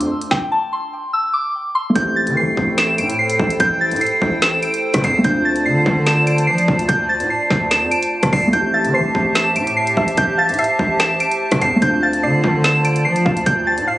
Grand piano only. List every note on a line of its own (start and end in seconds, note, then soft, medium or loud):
1.90 5.17 A3 medium
1.90 5.19 C4 medium
1.98 5.21 E4 medium
1.98 5.23 G4 medium
5.18 8.46 A3 medium
5.18 8.48 C4 medium
5.26 8.50 D4 medium
5.26 8.52 F4 medium
8.47 11.74 A3 medium
8.47 11.77 C4 medium
8.55 11.79 E4 medium
8.55 11.81 G4 medium
11.76 13.98 A3 medium
11.76 13.98 C4 medium
11.84 13.98 D4 medium
11.84 13.98 F4 medium